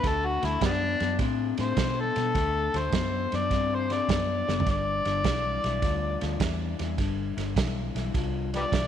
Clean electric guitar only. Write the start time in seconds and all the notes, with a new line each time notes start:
0.03 D3 A3
0.42 D3 A3
0.61 D3 B3
1.00 D3 B3
1.20 D3 C4
1.58 D3 C4
1.76 D3 B3
2.16 D3 B3
2.35 D3 A3
2.74 D3 A3
2.93 D3 B3
3.32 D3 B3
3.51 D3 C4
3.90 D3 C4
4.09 D3 B3
4.48 D3 B3
4.67 G2 D3
5.05 G2 D3
5.24 G2 E3
5.64 G2 E3
5.82 G2 F3
6.21 G2 F3
6.40 G2 E3
6.79 G2 E3
6.98 G2 D3
7.37 G2 D3
7.56 G2 E3
7.95 G2 E3
8.14 G2 F3
8.53 G2 F3
8.73 G2 E3